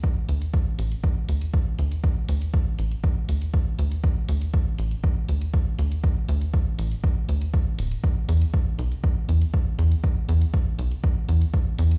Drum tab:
HH |x-xxx-xxx-xxx-xx|x-xxx-xxx-xxx-xx|x-xxx-xxx-xxx-xx|x-xxx-xxx-xxx-xx|
BD |o---o---o---o---|o---o---o---o---|o---o---o---o---|o---o---o---o---|

HH |x-xxx-xxx-xxx-xx|x-xxx-xxx-xxx-xx|
BD |o---o---o---o---|o---o---o---o---|